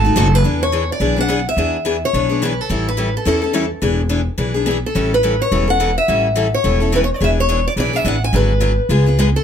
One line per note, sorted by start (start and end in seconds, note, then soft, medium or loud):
0.00 0.15 G#1 medium
0.00 0.35 A5 loud
0.05 0.16 A3 medium
0.05 0.16 D#4 medium
0.05 0.16 F#4 medium
0.16 0.43 F#1 loud
0.16 0.26 B2 loud
0.16 0.27 F#3 medium
0.16 0.27 A3 loud
0.16 0.27 D#4 loud
0.16 0.27 F#4 loud
0.16 0.35 A4 medium
0.35 0.63 B4 loud
0.44 0.89 E2 medium
0.44 0.63 E3 medium
0.44 0.63 B3 medium
0.44 0.63 D4 medium
0.44 0.64 G#4 medium
0.63 0.91 C#5 medium
0.72 0.83 E3 medium
0.72 0.83 B3 medium
0.72 0.83 D4 medium
0.72 0.83 G#4 medium
0.92 1.17 D5 medium
1.00 1.45 B1 medium
1.00 1.16 E3 medium
1.00 1.16 B3 medium
1.00 1.16 D4 medium
1.00 1.15 G#4 medium
1.16 1.28 B3 soft
1.16 1.28 D4 soft
1.16 1.28 G#4 medium
1.21 1.48 F#5 loud
1.28 1.39 E3 medium
1.28 1.39 B3 medium
1.28 1.40 D4 medium
1.28 1.40 G#4 medium
1.49 2.05 E5 loud
1.56 2.02 E2 medium
1.56 1.76 E3 medium
1.56 1.76 B3 medium
1.56 1.76 D4 medium
1.56 1.76 G#4 medium
1.85 1.95 E3 medium
1.85 1.96 B3 medium
1.85 1.96 D4 medium
1.85 1.96 G#4 medium
2.05 2.41 C#5 medium
2.13 2.58 B1 medium
2.13 2.29 E3 medium
2.13 2.29 B3 medium
2.13 2.29 D4 medium
2.13 2.28 G#4 medium
2.29 2.41 B3 soft
2.29 2.41 D4 soft
2.29 2.41 G#4 medium
2.42 2.52 E3 medium
2.42 2.52 B3 medium
2.42 2.53 D4 medium
2.42 2.53 G#4 medium
2.42 2.61 B4 medium
2.61 2.88 A4 medium
2.69 3.15 A1 medium
2.69 2.88 E3 medium
2.69 2.89 G3 medium
2.69 2.89 C#4 medium
2.69 2.89 E4 medium
2.69 2.89 A4 medium
2.89 3.16 B4 medium
2.97 3.08 E3 medium
2.97 3.08 G3 medium
2.97 3.08 C#4 medium
2.97 3.08 E4 medium
2.97 3.08 A4 medium
3.17 3.27 A4 medium
3.25 3.71 E2 medium
3.25 3.41 E3 medium
3.25 3.42 G3 medium
3.25 3.42 C#4 medium
3.25 3.42 E4 medium
3.25 3.40 A4 medium
3.25 3.68 A4 medium
3.42 3.53 C#4 soft
3.42 3.53 E4 medium
3.42 3.53 A4 medium
3.53 3.64 E3 medium
3.53 3.64 G3 medium
3.53 3.64 C#4 medium
3.53 3.65 E4 medium
3.53 3.65 A4 loud
3.82 4.27 E1 medium
3.82 4.01 E3 medium
3.82 4.01 B3 medium
3.82 4.01 D4 medium
3.82 4.01 G#4 medium
4.09 4.20 E3 medium
4.09 4.20 B3 medium
4.09 4.20 D4 medium
4.09 4.21 G#4 medium
4.38 4.83 B1 medium
4.38 4.54 E3 medium
4.38 4.54 B3 medium
4.38 4.54 D4 medium
4.38 4.53 G#4 medium
4.54 4.65 B3 soft
4.54 4.66 D4 medium
4.54 4.66 G#4 medium
4.66 4.77 E3 medium
4.66 4.77 B3 medium
4.66 4.77 D4 medium
4.66 4.77 G#4 medium
4.71 4.76 G#4 medium
4.86 5.11 A4 medium
4.95 5.40 A1 medium
4.95 5.14 E3 medium
4.95 5.14 G3 medium
4.95 5.14 C#4 medium
4.95 5.14 E4 medium
4.95 5.14 A4 medium
5.14 5.42 B4 medium
5.23 5.33 E3 medium
5.23 5.34 G3 medium
5.23 5.34 C#4 medium
5.23 5.34 E4 medium
5.23 5.34 A4 medium
5.42 5.70 C#5 medium
5.51 5.97 E1 medium
5.51 5.67 E3 medium
5.51 5.67 G3 medium
5.51 5.67 C#4 medium
5.51 5.67 E4 medium
5.51 5.66 A4 medium
5.68 5.79 C#4 soft
5.68 5.79 E4 soft
5.68 5.79 A4 medium
5.68 5.97 F#5 medium
5.80 5.90 E3 medium
5.80 5.90 G3 medium
5.80 5.90 C#4 medium
5.80 5.90 E4 medium
5.80 5.91 A4 medium
5.98 6.49 E5 medium
6.08 6.53 A1 medium
6.08 6.27 E3 medium
6.08 6.27 G3 medium
6.08 6.27 C#4 medium
6.08 6.27 E4 medium
6.08 6.27 A4 medium
6.36 6.46 E3 medium
6.36 6.46 G3 medium
6.36 6.46 C#4 medium
6.36 6.47 E4 medium
6.36 6.47 A4 medium
6.54 6.91 C#5 medium
6.64 7.09 E1 medium
6.64 6.80 E3 medium
6.64 6.80 G3 medium
6.64 6.80 C#4 medium
6.64 6.80 E4 medium
6.64 6.79 A4 medium
6.80 6.91 C#4 soft
6.80 6.92 E4 soft
6.80 6.92 A4 medium
6.92 7.03 E3 medium
6.92 7.03 G3 medium
6.92 7.03 C#4 medium
6.92 7.03 E4 medium
6.92 7.03 A4 medium
6.92 6.99 B4 medium
7.04 7.08 C#5 medium
7.14 7.22 D5 medium
7.21 7.66 E1 medium
7.21 7.39 E3 medium
7.21 7.40 B3 medium
7.21 7.40 D4 medium
7.21 7.40 G#4 medium
7.21 7.29 E5 medium
7.40 7.67 C#5 loud
7.49 7.59 E3 medium
7.49 7.59 B3 medium
7.49 7.59 D4 medium
7.49 7.59 G#4 medium
7.68 7.72 D5 medium
7.76 8.00 B1 medium
7.76 7.92 E3 medium
7.76 7.93 B3 medium
7.76 7.93 D4 medium
7.76 7.92 G#4 medium
7.76 7.96 D5 loud
7.93 8.04 B3 soft
7.93 8.04 D4 soft
7.93 8.05 G#4 medium
7.93 8.06 E5 medium
8.04 8.29 A1 medium
8.04 8.15 E3 medium
8.04 8.16 B3 medium
8.04 8.16 D4 medium
8.04 8.16 G#4 medium
8.04 8.22 F#5 medium
8.24 8.34 G#5 loud
8.33 8.78 G#1 medium
8.33 8.52 D3 medium
8.33 8.52 F#3 medium
8.33 8.52 B3 medium
8.33 8.52 F#4 medium
8.33 8.53 G#4 medium
8.33 9.19 B4 medium
8.60 8.71 D3 medium
8.60 8.71 F#3 medium
8.60 8.71 B3 medium
8.60 8.72 F#4 medium
8.60 8.72 G#4 medium
8.89 9.34 C#2 medium
8.89 9.05 C#3 medium
8.89 9.05 G#3 medium
8.89 9.06 B3 medium
8.89 9.06 F4 medium
8.89 9.05 G#4 medium
9.06 9.18 B3 soft
9.06 9.18 F4 soft
9.06 9.18 G#4 medium
9.19 9.29 C#3 medium
9.19 9.28 G#3 medium
9.19 9.29 B3 medium
9.19 9.29 F4 medium
9.19 9.29 G#4 medium
9.19 9.25 G#4 medium
9.36 9.44 A4 medium